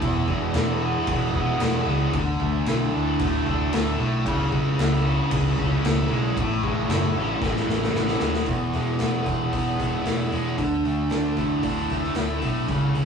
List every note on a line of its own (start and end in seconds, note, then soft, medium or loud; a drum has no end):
0.00 0.21 E1 medium
0.00 1.35 E2 medium
0.00 0.55 E4 medium
0.00 kick loud
0.00 crash medium
0.28 0.48 E2 medium
0.28 1.06 G#3 medium
0.28 kick medium
0.54 0.94 E1 medium
0.54 1.61 E4 medium
0.54 snare loud
0.54 crash medium
0.81 1.35 B3 medium
1.07 1.27 E1 medium
1.07 1.87 G#3 medium
1.07 kick loud
1.07 crash medium
1.34 1.54 E1 medium
1.34 2.15 B3 medium
1.34 kick medium
1.60 1.80 E1 medium
1.60 2.16 E4 medium
1.60 snare loud
1.60 crash medium
1.87 2.07 C#2 medium
1.87 2.14 G#3 medium
2.13 2.33 D2 loud
2.13 3.46 D3 medium
2.13 kick loud
2.13 crash medium
2.39 2.59 D2 medium
2.39 3.19 A3 medium
2.39 kick medium
2.66 2.87 B1 medium
2.66 3.73 E4 medium
2.66 snare loud
2.66 crash medium
2.94 3.14 D2 medium
2.94 3.45 D4 medium
3.19 3.40 D2 loud
3.19 3.98 A3 medium
3.19 kick loud
3.19 crash medium
3.46 3.66 D2 loud
3.46 4.25 D4 medium
3.46 kick medium
3.73 3.93 D2 medium
3.73 4.79 E4 medium
3.73 snare loud
3.73 crash medium
3.99 4.26 B1 medium
3.99 4.26 A3 medium
4.25 4.45 C#2 loud
4.25 5.57 C#3 medium
4.25 kick loud
4.25 crash medium
4.52 4.72 C#3 medium
4.52 5.31 G#3 medium
4.52 kick medium
4.79 5.18 C#2 medium
4.79 5.82 E4 medium
4.79 snare loud
4.79 crash medium
5.05 5.57 C#4 medium
5.31 5.51 C#2 loud
5.31 6.10 G#3 medium
5.31 kick loud
5.31 crash medium
5.58 5.77 C#2 medium
5.58 6.37 C#4 medium
5.58 kick medium
5.83 6.04 C#2 medium
5.83 6.90 E4 medium
5.83 snare loud
5.83 crash medium
6.10 6.30 B1 medium
6.10 6.40 G#3 medium
6.37 6.56 A1 medium
6.37 7.68 A2 medium
6.37 kick loud
6.37 crash medium
6.62 6.83 A1 medium
6.62 7.41 G#3 medium
6.62 kick medium
6.89 7.09 F#1 loud
6.89 7.94 E4 medium
6.89 snare loud
6.89 crash medium
7.15 7.35 A1 medium
7.15 7.67 C#4 medium
7.42 7.62 A1 medium
7.42 8.19 G#3 medium
7.42 kick loud
7.42 snare medium
7.57 snare medium
7.68 7.88 A1 medium
7.68 8.47 C#4 medium
7.68 snare medium
7.83 snare medium
7.95 8.14 A1 medium
7.95 8.48 E4 medium
7.95 snare medium
8.08 snare medium
8.20 8.41 D#2 medium
8.20 8.47 G#3 medium
8.20 snare loud
8.34 snare medium
8.46 8.69 E1 medium
8.46 9.79 E2 medium
8.46 kick loud
8.46 open hi-hat medium
8.73 8.96 E1 medium
8.73 9.75 G#3 medium
8.73 snare soft
8.73 open hi-hat soft
8.99 9.22 E1 medium
8.99 9.50 B3 medium
8.99 snare loud
8.99 open hi-hat medium
9.25 9.49 E1 medium
9.25 10.03 E4 medium
9.25 kick medium
9.25 open hi-hat medium
9.51 9.98 E1 medium
9.51 10.58 B3 medium
9.51 kick loud
9.51 open hi-hat medium
9.76 10.30 G#3 medium
9.76 kick medium
9.76 open hi-hat medium
10.04 10.28 E1 medium
10.04 10.61 E4 medium
10.04 snare loud
10.04 open hi-hat medium
10.31 10.54 E1 medium
10.31 10.58 G#3 medium
10.31 open hi-hat medium
10.58 10.81 D2 medium
10.58 11.90 D3 medium
10.58 kick loud
10.58 open hi-hat medium
10.84 11.07 D2 medium
10.84 11.89 A3 medium
10.84 open hi-hat soft
11.10 11.34 D2 medium
11.10 11.62 D4 medium
11.10 snare loud
11.10 open hi-hat medium
11.37 11.60 D2 medium
11.37 12.16 E4 medium
11.37 kick medium
11.37 open hi-hat medium
11.63 12.08 D2 medium
11.63 12.69 D4 medium
11.63 kick loud
11.63 open hi-hat medium
11.90 12.42 A3 medium
11.90 kick medium
11.90 open hi-hat medium
12.04 snare soft
12.15 12.39 D2 medium
12.15 13.05 E4 medium
12.15 snare loud
12.15 open hi-hat medium
12.42 12.65 B1 medium
12.42 12.70 A3 medium
12.42 kick medium
12.42 open hi-hat medium
12.68 12.91 C#2 medium
12.68 13.05 C#3 medium
12.68 kick loud
12.68 open hi-hat medium
12.94 13.05 C#2 medium
12.94 13.05 G#3 medium
12.94 open hi-hat soft